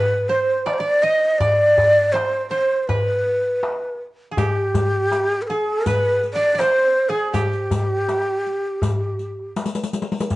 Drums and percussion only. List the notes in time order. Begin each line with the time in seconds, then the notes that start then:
0.30 darbuka ka
0.67 darbuka tek
1.40 darbuka dum
1.78 darbuka dum
2.15 darbuka tek
2.89 darbuka dum
3.27 darbuka ka
3.63 darbuka tek
4.37 riq, darbuka dum
4.74 riq, darbuka dum
5.11 riq, darbuka tek
5.49 riq, darbuka ka
5.86 riq, darbuka dum
6.05 riq
6.24 riq, darbuka ka
6.42 riq
6.59 riq, darbuka tek
7.34 riq, darbuka dum
7.53 riq
7.71 riq, darbuka dum
8.08 riq, darbuka tek
8.46 riq
8.82 riq, darbuka dum
9.02 darbuka ka
9.19 riq, darbuka ka
9.39 darbuka ka
9.56 riq, darbuka tek
9.66 riq
9.75 riq
9.84 riq
9.94 riq
10.02 riq
10.12 riq
10.21 riq
10.30 riq, darbuka dum